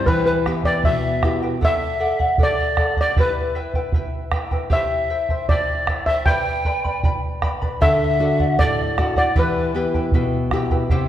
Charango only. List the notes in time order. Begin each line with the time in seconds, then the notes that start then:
0.08 E4 G4 B4 E5 G5
0.45 E4 B4 E5 G5
0.65 E4 B4 G5
0.85 E4 B4 E5 G5
1.23 E4 B4 E5 G5
1.43 E4 B4 G5
1.61 A4 D5 F#5
2.00 A4 D5 F#5
2.19 D5 F#5
2.39 A4 D5 F#5
2.77 A4 D5 F#5
2.97 D5 F#5
3.17 E4 G4 B4 E5 G5
3.55 E4 B4 E5 G5
3.75 E4 B4 G5
3.94 E4 B4 E5 G5
4.32 E4 B4 E5 G5
4.51 E4 B4 G5
4.70 E4 G4 C5 E5 G5
5.10 E4 C5 E5 G5
5.30 E4 C5 G5
5.50 E4 C5 E5 G5
5.88 E4 C5 E5 G5
6.07 E4 C5 G5
6.27 G4 B4 D5 G5 B5
6.65 B4 D5 G5 B5
6.84 B4 D5 B5
7.04 B4 D5 G5 B5
7.42 B4 D5 G5 B5
7.62 B4 D5 B5
7.81 A4 D5 F#5
8.21 A4 D5 F#5
8.40 D5 F#5
8.59 A4 D5 F#5
8.97 A4 D5 F#5
9.16 D5 F#5
9.36 E4 G4 B4 E5 G5
9.76 E4 B4 E5 G5
9.94 E4 B4 G5
10.15 E4 B4 E5 G5
10.53 E4 B4 E5 G5
10.71 E4 B4 G5
10.90 E4 G4 C5 E5 G5